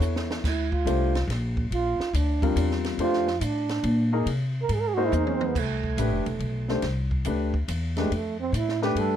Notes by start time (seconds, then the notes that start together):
Already playing: B3 E4 A4 C#5
0.00 E2, hi-hat pedal
0.16 snare
0.31 snare
0.44 D2 E4, kick, snare, crash
0.71 F4, kick
0.85 C2 A3 D4 G4 C5, hi-hat pedal, ride
1.15 snare, ride
1.27 A#1, snare, ride
1.57 kick
1.70 A#1 F4, ride
1.99 muted upright bass stroke, snare
2.13 D2 D4, hi-hat pedal, ride
2.42 G3 C4 F4 A#4, kick, ride
2.56 E2, hi-hat pedal, ride
2.71 snare
2.84 snare, ride
2.98 F2 A3 D4 F4 G4 C5, ride
3.13 snare
3.27 snare
3.41 A2 D4, hi-hat pedal, ride
3.69 snare, ride
3.83 A#2, ride
4.13 A#3 D#4 G#4 A#4
4.26 C3, ride
4.62 A#4
4.69 G#2, ride
4.73 G#4
4.80 A#4
4.88 G#4
4.94 A#3 D#4 F#4 G#4 C5
5.06 E4
5.12 E2, hi-hat pedal, mid tom
5.16 D#4
5.26 C#4, mid tom
5.34 C4
5.41 mid tom
5.48 B3
5.55 C2 A3, kick, crash
5.83 kick
5.97 A1 A3 D4 G4 B4, hi-hat pedal, ride
6.11 F1
6.26 E1, ride
6.39 B1, ride
6.68 A3 D4 G4 C5, snare
6.82 C2, snare, ride
7.11 kick
7.25 D2 A3 D4 G4 B4, hi-hat pedal, ride
7.54 kick
7.68 E2, hi-hat pedal, ride
7.97 G#3 A3 D4 G4 B4, snare, ride
8.10 F2, ride
8.15 A3
8.39 C4
8.52 A2 E4, hi-hat pedal, ride
8.69 snare
8.82 A3 D4 G4 B4, snare
8.95 G2 A4, ride